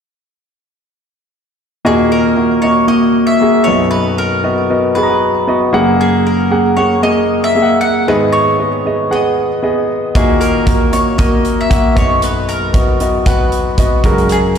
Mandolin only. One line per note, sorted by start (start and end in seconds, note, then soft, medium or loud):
1.86 2.10 G#4 medium
2.12 2.60 A#4 medium
2.62 2.88 C#5 medium
2.88 3.30 D#5 medium
3.27 3.66 E5 medium
3.64 3.90 C#5 medium
3.91 4.18 B4 medium
4.18 4.95 A#4 medium
4.95 5.69 B4 medium
6.01 6.27 G#4 medium
6.27 6.74 A#4 medium
6.77 7.03 C#5 medium
7.03 7.41 D#5 medium
7.44 7.79 E5 medium
7.81 8.05 F#5 medium
8.08 8.15 B4 medium
8.33 9.12 C#5 medium
9.12 9.86 D#5 medium
10.16 10.42 G#4 medium
10.41 10.93 A#4 medium
10.93 11.18 C#5 medium
11.18 11.60 D#5 medium
11.61 11.95 E5 medium
11.98 12.23 C#5 medium
12.24 12.47 B4 medium
12.49 13.26 A#4 medium
13.26 14.00 B4 medium
14.32 14.39 G#4 medium